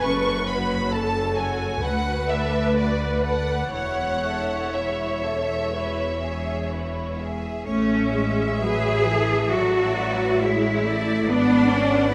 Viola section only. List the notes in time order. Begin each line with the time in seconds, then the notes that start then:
Already playing: B4
0.93 A4
1.82 B4
3.73 C#5
7.67 A3
8.15 G#3
8.64 F#3
9.10 E3
9.54 F#3
10.42 G#3
10.85 A3
11.28 B3
11.70 C#4